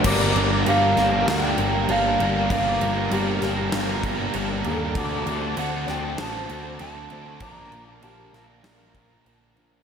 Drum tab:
CC |xxxxxxxx|xxxxxxxx|xxxxxxxx|xxxxxxxx|
SD |---oo---|---oo---|---oo---|---oo---|
BD |o-------|o----o--|o-------|o----o--|